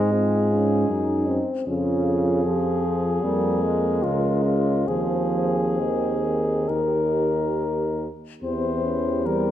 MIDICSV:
0, 0, Header, 1, 6, 480
1, 0, Start_track
1, 0, Key_signature, -4, "major"
1, 0, Tempo, 780234
1, 1029, Time_signature, 4, 2, 24, 8
1, 2477, Tempo, 845070
1, 2957, Tempo, 896861
1, 4397, Tempo, 843882
1, 5505, End_track
2, 0, Start_track
2, 0, Title_t, "Cornet"
2, 0, Program_c, 0, 56
2, 0, Note_on_c, 0, 68, 38
2, 75, Note_off_c, 0, 68, 0
2, 79, Note_on_c, 0, 68, 39
2, 851, Note_off_c, 0, 68, 0
2, 1033, Note_on_c, 0, 68, 41
2, 2478, Note_on_c, 0, 65, 36
2, 2487, Note_off_c, 0, 68, 0
2, 2709, Note_off_c, 0, 65, 0
2, 2712, Note_on_c, 0, 65, 33
2, 2959, Note_on_c, 0, 68, 34
2, 2967, Note_off_c, 0, 65, 0
2, 3927, Note_on_c, 0, 70, 31
2, 3935, Note_off_c, 0, 68, 0
2, 4698, Note_off_c, 0, 70, 0
2, 4887, Note_on_c, 0, 72, 34
2, 5361, Note_on_c, 0, 70, 34
2, 5370, Note_off_c, 0, 72, 0
2, 5505, Note_off_c, 0, 70, 0
2, 5505, End_track
3, 0, Start_track
3, 0, Title_t, "French horn section"
3, 0, Program_c, 1, 60
3, 0, Note_on_c, 1, 63, 40
3, 69, Note_on_c, 1, 60, 40
3, 72, Note_off_c, 1, 63, 0
3, 308, Note_off_c, 1, 60, 0
3, 310, Note_on_c, 1, 61, 41
3, 547, Note_off_c, 1, 61, 0
3, 552, Note_on_c, 1, 63, 43
3, 931, Note_off_c, 1, 63, 0
3, 1036, Note_on_c, 1, 65, 37
3, 1499, Note_off_c, 1, 65, 0
3, 1517, Note_on_c, 1, 67, 39
3, 1749, Note_off_c, 1, 67, 0
3, 1753, Note_on_c, 1, 68, 35
3, 1990, Note_off_c, 1, 68, 0
3, 1991, Note_on_c, 1, 70, 37
3, 2942, Note_off_c, 1, 70, 0
3, 2964, Note_on_c, 1, 68, 31
3, 3913, Note_off_c, 1, 68, 0
3, 3928, Note_on_c, 1, 67, 32
3, 4698, Note_off_c, 1, 67, 0
3, 4889, Note_on_c, 1, 67, 35
3, 5505, Note_off_c, 1, 67, 0
3, 5505, End_track
4, 0, Start_track
4, 0, Title_t, "Euphonium"
4, 0, Program_c, 2, 58
4, 0, Note_on_c, 2, 60, 38
4, 67, Note_off_c, 2, 60, 0
4, 75, Note_on_c, 2, 65, 41
4, 547, Note_on_c, 2, 63, 44
4, 557, Note_off_c, 2, 65, 0
4, 782, Note_on_c, 2, 60, 42
4, 792, Note_off_c, 2, 63, 0
4, 1026, Note_off_c, 2, 60, 0
4, 1030, Note_on_c, 2, 61, 42
4, 1262, Note_off_c, 2, 61, 0
4, 1266, Note_on_c, 2, 61, 40
4, 1499, Note_off_c, 2, 61, 0
4, 1502, Note_on_c, 2, 60, 37
4, 1812, Note_off_c, 2, 60, 0
4, 1986, Note_on_c, 2, 58, 38
4, 2454, Note_off_c, 2, 58, 0
4, 2480, Note_on_c, 2, 61, 36
4, 2960, Note_on_c, 2, 60, 34
4, 2968, Note_off_c, 2, 61, 0
4, 3932, Note_on_c, 2, 63, 34
4, 3940, Note_off_c, 2, 60, 0
4, 4700, Note_off_c, 2, 63, 0
4, 4888, Note_on_c, 2, 60, 35
4, 5127, Note_on_c, 2, 61, 36
4, 5136, Note_off_c, 2, 60, 0
4, 5364, Note_on_c, 2, 60, 36
4, 5373, Note_off_c, 2, 61, 0
4, 5505, Note_off_c, 2, 60, 0
4, 5505, End_track
5, 0, Start_track
5, 0, Title_t, "Trombone"
5, 0, Program_c, 3, 57
5, 0, Note_on_c, 3, 56, 69
5, 837, Note_off_c, 3, 56, 0
5, 1030, Note_on_c, 3, 49, 56
5, 1500, Note_on_c, 3, 53, 57
5, 1510, Note_off_c, 3, 49, 0
5, 1988, Note_on_c, 3, 55, 52
5, 1997, Note_off_c, 3, 53, 0
5, 2234, Note_on_c, 3, 56, 53
5, 2244, Note_off_c, 3, 55, 0
5, 2960, Note_off_c, 3, 56, 0
5, 2962, Note_on_c, 3, 53, 53
5, 3452, Note_on_c, 3, 51, 39
5, 3460, Note_off_c, 3, 53, 0
5, 4401, Note_off_c, 3, 51, 0
5, 4891, Note_on_c, 3, 52, 51
5, 5363, Note_on_c, 3, 55, 50
5, 5371, Note_off_c, 3, 52, 0
5, 5505, Note_off_c, 3, 55, 0
5, 5505, End_track
6, 0, Start_track
6, 0, Title_t, "Tuba"
6, 0, Program_c, 4, 58
6, 0, Note_on_c, 4, 44, 37
6, 526, Note_off_c, 4, 44, 0
6, 547, Note_on_c, 4, 42, 39
6, 858, Note_off_c, 4, 42, 0
6, 1031, Note_on_c, 4, 41, 41
6, 1961, Note_off_c, 4, 41, 0
6, 1986, Note_on_c, 4, 41, 41
6, 2481, Note_on_c, 4, 37, 35
6, 2489, Note_off_c, 4, 41, 0
6, 2955, Note_off_c, 4, 37, 0
6, 2958, Note_on_c, 4, 39, 32
6, 3910, Note_off_c, 4, 39, 0
6, 3935, Note_on_c, 4, 39, 33
6, 4686, Note_off_c, 4, 39, 0
6, 4888, Note_on_c, 4, 40, 36
6, 5505, Note_off_c, 4, 40, 0
6, 5505, End_track
0, 0, End_of_file